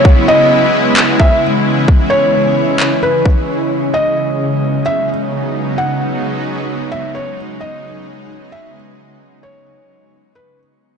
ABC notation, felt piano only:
X:1
M:4/4
L:1/8
Q:1/4=131
K:B
V:1 name="Felt piano"
z d4 e z2 | z c4 B z2 | z d4 e z2 | z f4- f e c |
z d4 e z2 | z c4 B z2 |]